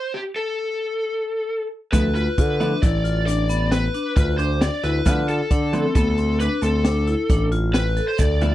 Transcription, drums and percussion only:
1.93 kick, closed hi-hat, shaker
2.15 closed hi-hat
2.38 kick, closed hi-hat
2.61 closed hi-hat
2.83 kick, closed hi-hat, shaker
3.05 closed hi-hat, shaker
3.28 snare, closed hi-hat
3.50 closed hi-hat, shaker
3.72 snare, closed hi-hat
3.94 closed hi-hat
4.16 kick, closed hi-hat, shaker
4.39 closed hi-hat
4.61 snare, closed hi-hat
4.83 snare, closed hi-hat
5.06 kick, closed hi-hat, shaker
5.28 closed hi-hat
5.51 kick, closed hi-hat
5.73 closed hi-hat
5.95 kick, closed hi-hat, shaker
6.18 closed hi-hat, shaker
6.40 closed hi-hat
6.62 closed hi-hat, shaker
6.85 snare, closed hi-hat
7.07 closed hi-hat
7.30 kick, closed hi-hat, shaker
7.52 closed hi-hat
7.74 snare, closed hi-hat
7.97 snare, closed hi-hat
8.19 kick, closed hi-hat, shaker
8.41 closed hi-hat

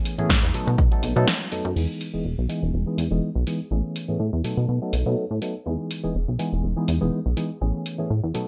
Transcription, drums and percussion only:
0.05 open hi-hat
0.19 closed hi-hat
0.30 kick, snare, closed hi-hat
0.43 closed hi-hat
0.54 open hi-hat
0.68 closed hi-hat
0.78 kick, closed hi-hat
0.92 closed hi-hat
1.03 open hi-hat
1.16 closed hi-hat
1.28 snare, closed hi-hat
1.41 closed hi-hat
1.52 open hi-hat
1.65 closed hi-hat
1.76 crash
2.01 open hi-hat
2.50 open hi-hat
2.98 open hi-hat
3.47 open hi-hat
3.96 open hi-hat
4.45 open hi-hat
4.93 open hi-hat
5.42 open hi-hat
5.91 open hi-hat
6.39 open hi-hat
6.88 open hi-hat
7.37 open hi-hat
7.86 open hi-hat
8.35 open hi-hat

